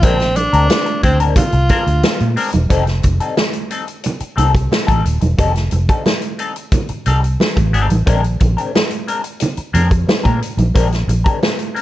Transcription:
0.02 A#1 G#3 C4 D4 A#4, kick, closed hi-hat
0.20 muted clean electric guitar stroke, snare, closed hi-hat
0.36 D4, muted clean electric guitar stroke, closed hi-hat, muted conga
0.53 D2 G#3 C4 D4 A#4, closed hi-hat
0.69 muted clean electric guitar stroke, snare, closed hi-hat, high conga
0.86 muted clean electric guitar stroke, closed hi-hat
1.03 D2 G#3 C4 D4 C5, kick, closed hi-hat
1.20 G#3 C4 D4 A#4, closed hi-hat
1.36 F4, kick, closed hi-hat, muted conga, low conga
1.52 C2, muted clean electric guitar stroke, closed hi-hat
1.69 G#3 C4 D4 A#4, kick, closed hi-hat, muted conga
1.86 D2, muted clean electric guitar stroke, closed hi-hat
2.03 muted clean electric guitar stroke, snare, closed hi-hat, high conga
2.20 A#2, closed hi-hat
2.36 G#3 C4 D4 A#4, open hi-hat
2.53 E1, muted clean electric guitar stroke, closed hi-hat, high conga
2.70 F1 G3 C4 D#4 A4, kick, closed hi-hat
2.86 muted clean electric guitar stroke, snare, closed hi-hat
3.03 F1, muted clean electric guitar stroke, kick, closed hi-hat, muted conga
3.20 G3 C4 D#4 A4, closed hi-hat
3.37 snare, high conga
3.53 closed hi-hat
3.71 G3 C4 D#4 A4, closed hi-hat
3.87 muted clean electric guitar stroke, closed hi-hat
4.04 muted clean electric guitar stroke, closed hi-hat, muted conga, low conga
4.20 muted clean electric guitar stroke, muted fingered electric bass stroke, closed hi-hat
4.36 C2 G3 C4 D#4 A4, closed hi-hat, muted conga, low conga
4.55 kick, closed hi-hat
4.71 muted clean electric guitar stroke, snare, high conga
4.87 A1 G3 C4 D#4 A4, kick, closed hi-hat
5.05 D#1, muted clean electric guitar stroke, closed hi-hat
5.21 E1, muted clean electric guitar stroke, closed hi-hat, high conga
5.38 F1 G3 C4 D#4 A4, kick, closed hi-hat
5.54 muted clean electric guitar stroke, snare, closed hi-hat
5.71 F1, muted clean electric guitar stroke, closed hi-hat, muted conga
5.89 G3 C4 D#4 A4, kick, closed hi-hat
6.05 muted clean electric guitar stroke, snare, high conga
6.22 closed hi-hat
6.39 G3 C4 D#4 A4, closed hi-hat
6.56 muted clean electric guitar stroke, closed hi-hat
6.72 muted clean electric guitar stroke, kick, closed hi-hat, muted conga, low conga
6.89 muted clean electric guitar stroke, muted fingered electric bass stroke, closed hi-hat
7.06 C2 G3 C4 D#4 A4, closed hi-hat, muted conga
7.23 muted clean electric guitar stroke, closed hi-hat
7.40 muted clean electric guitar stroke, snare, high conga
7.56 A1, muted clean electric guitar stroke, kick, closed hi-hat
7.73 G#1 G3 C4 D#4 A4, closed hi-hat
7.89 A1, muted clean electric guitar stroke, closed hi-hat, high conga
8.06 A#1 G#3 C4 D4 A#4, kick, closed hi-hat
8.23 muted clean electric guitar stroke, closed hi-hat
8.40 A#1, muted clean electric guitar stroke, kick, closed hi-hat, muted conga
8.57 G#3 C4 D4 A#4, closed hi-hat
8.74 muted clean electric guitar stroke, snare, high conga
8.91 closed hi-hat
9.08 G#3 C4 D4 A#4, closed hi-hat
9.24 muted clean electric guitar stroke, closed hi-hat
9.40 muted clean electric guitar stroke, closed hi-hat, muted conga, low conga
9.57 muted clean electric guitar stroke, muted fingered electric bass stroke, closed hi-hat
9.73 F2 G#3 C4 D4 A#4, closed hi-hat, low conga
9.90 muted clean electric guitar stroke, kick, closed hi-hat
10.07 muted clean electric guitar stroke, muted fingered electric bass stroke, snare, high conga
10.23 A#2 G#3 C4 D4 A#4, kick, closed hi-hat
10.42 muted clean electric guitar stroke, closed hi-hat
10.57 A#1, muted clean electric guitar stroke, closed hi-hat, high conga
10.75 A#1 G#3 C4 D4 A#4, kick, closed hi-hat
10.90 muted clean electric guitar stroke, snare, closed hi-hat
11.08 A#1, muted clean electric guitar stroke, closed hi-hat, muted conga
11.24 G#3 C4 D4 A#4, kick, closed hi-hat
11.41 muted clean electric guitar stroke, snare, high conga
11.59 closed hi-hat
11.74 G#3 C4 D4 A#4, open hi-hat

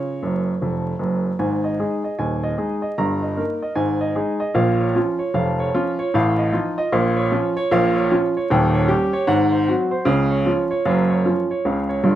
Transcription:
Already playing: C#3 F4 C#5
0.23 F#1 F#2
0.61 F1 F2
0.99 F#1 F#2
1.39 G#1 G#2 G#5
1.64 D#5
1.79 G#3 D#4 G#4
2.04 D#5
2.19 D#1 D#2 G#5
2.43 D#5
2.58 G#3 D#4 G#4
2.82 D#5
2.98 G1 G2 A#5
3.22 D#5
3.37 A#3 D#4 A#4
3.62 D#5
3.75 G#1 G#2 G#5
4.01 D#5
4.15 G#3 D#4 G#4
4.40 D#5
4.54 A#1 A#2 F5
4.80 C#5
4.95 F3 C#4 F4
5.19 C#5
5.34 F1 F2 F5
5.60 C#5
5.74 F3 C#4 F4
5.99 C#5
6.14 A1 A2 F5
6.38 D#5
6.53 F3 D#4 F4
6.78 D#5
6.92 A#1 A#2 F5
7.16 C#5
7.32 F3 C#4 F4
7.57 C#5
7.71 A#1 A#2 F5
7.96 C#5
8.11 F3 C#4 F4
8.37 C#5
8.50 D#1 D#2 G5
8.74 C#5
8.88 G3 C#4 G4
9.13 C#5
9.27 G#1 G#2 F#5
9.52 C5
9.68 F#3 C4 F#4
9.91 C5
10.05 C#2 C#3 F5
10.31 C#5
10.46 F3 C#4 F4
10.71 C#5
10.85 F#1 F#2 F5
11.10 C#5
11.25 F3 C#4 F4
11.51 C#5
11.65 C#2 C#3 F5
11.89 C#5
12.04 G1 G2 F4

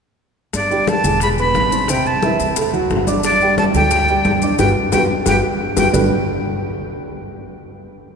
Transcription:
0.53 G1 D5, high bongo, high conga, maracas
0.71 G3 G4 G5, high conga, maracas
0.87 A5, high bongo, high conga, maracas
1.04 E1 G#3 G#4 G#5, high conga, low conga, maracas
1.20 B5, high bongo, high conga, maracas
1.38 B3 B4 B5, high conga, maracas
1.54 A1, high bongo, low bongo, high conga, maracas
1.72 C4 C5 C6, maracas
1.88 C3 C4 C5 G5, high bongo, high conga, maracas
2.05 A5, high bongo, high conga, maracas
2.23 E3 E4 E5, high bongo, high conga, maracas
2.39 D2, high bongo, high conga, maracas
2.56 A3 A4 A5, high bongo, high conga, maracas
2.73 F#3 F#4 F#5, high conga, maracas
2.90 G1, high bongo, low bongo, high conga, maracas
3.07 D4 D5 D6, high bongo, high conga, maracas
3.23 D5, high bongo, high conga, maracas
3.41 G3 G4 G5, high conga, maracas
3.58 A5, high bongo, high conga, maracas
3.74 D2 F#3 A4 G5, high conga, low conga, maracas
3.91 high bongo, high conga, maracas
4.08 G3 G4 G5, high conga, maracas
4.25 G1, high bongo, low bongo, high conga, maracas
4.42 D4 D5 D6, high conga, maracas
4.59 G1 F#4 G4 B4 G5, high bongo, high conga, maracas
4.92 G1 F#4 G4 B4 G5, high bongo, high conga, maracas
5.26 G1 F#4 G4 B4 G5, high bongo, high conga, maracas
5.76 G1 F#4 G4 B4 G5, high bongo, high conga, maracas
5.93 G1 G3 D4 F#4 G4 A4 B4, low bongo, low conga, maracas

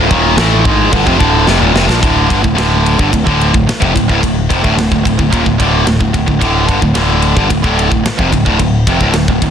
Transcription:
Already playing: D3 A3 E4 F4
0.10 D#1 D#2 A#2 D#3, kick
0.37 A1 A2 E3 A3, snare, crash
0.65 G#1 G#2 D#3 G#3, kick
0.91 G1 G2 D3, kick, crash
1.05 F1 F2 C3, kick
1.17 D1 D2 A2 D3, kick
1.46 F1 F2 C3, snare
1.60 D#1 D#2 A#2
1.74 F1 F2 C3, snare
1.85 A#1 A#2 F3, snare
2.01 D1 D2 A2 D3, kick, ride
2.28 G1 G2 D3, kick, ride
2.43 D1 D2 A2, kick
2.55 D1 D2 A2 D3, snare, ride
2.86 ride
2.98 G1 G2 D3, kick
3.13 D1 D2 A2, kick, ride
3.26 D1 D2 A2 D3, kick
3.41 ride
3.54 D1 D2 A2, kick
3.67 muted distorted electric guitar stroke, muted picked electric bass stroke, snare, ride
3.80 F1 F2 C3, kick
3.94 D1 D2 A2, kick, ride
4.09 D1 D2 A2, kick
4.22 D1 D2 A2, kick, ride
4.50 F1 F2 C3, kick, ride
4.62 D1 D2 A2, kick
4.75 D1 D2 A2, snare, ride
4.91 D1 D2 A2, kick
5.05 D1 D2 A2, kick, ride
5.19 D1 D2 A2, kick
5.32 D#1 D#2 A#2, kick, ride
5.46 D1 D2 A2, kick
5.60 D1 D2 A2 D3, kick, ride
5.85 D1 D2 A2, snare, ride
6.00 D1 D2 A2, kick
6.14 D1 D2 A2, kick, ride
6.26 D1 D2 A2, kick
6.41 D1 D2 A2 D3, kick, ride
6.68 G1 G2 D3, kick, ride
6.82 D1 D2 A2, kick
6.95 D1 D2 A2 D3, snare, ride
7.22 ride
7.36 G1 G2 D3, kick
7.50 D1 D2 A2, kick, ride
7.64 D1 D2 A2 D3, kick
7.79 ride
7.91 D1 D2 A2, kick
8.05 muted picked electric bass stroke, muted distorted electric guitar stroke, snare, ride
8.19 F1 F2 C3, kick
8.32 D1 D2 A2, kick, ride
8.46 D1 D2 A2, kick
8.59 D1 D2 A2, kick, ride
8.87 F1 F2 C3, kick, ride
9.01 D1 D2 A2, kick
9.12 D1 D2 A2, snare, ride
9.28 D1 D2 A2, kick
9.42 D1 D2 A2, kick, ride

